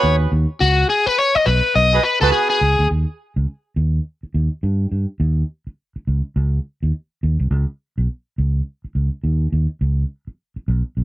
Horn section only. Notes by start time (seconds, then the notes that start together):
Already playing: B3 F#4 G#4 B4
1.93 B3 F#4 G#4 B4
2.22 B3 F#4 G#4 B4